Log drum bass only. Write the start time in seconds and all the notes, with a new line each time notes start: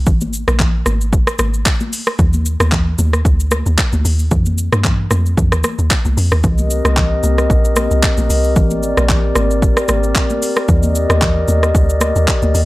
0.07 G#1
0.48 A#1
0.86 G#1
1.39 G#1
2.19 D#2
2.60 D#2
2.99 D#2
3.25 D2
3.66 D#2
3.93 D2
4.05 D#2
4.31 F2
4.72 G2
5.11 F2
5.38 F2
5.52 D#2
5.79 D#2
6.05 C2
6.17 F2
6.32 D#2
6.44 C2
6.85 C2
7.23 C2
7.50 A#1
7.91 C2
8.18 A#1
8.30 C2
8.56 G#1
8.97 A#1
9.36 G#1
9.89 G#1
10.69 D#2
11.10 D#2
11.48 D#2
11.75 D2
12.16 D#2
12.42 D2
12.54 D#2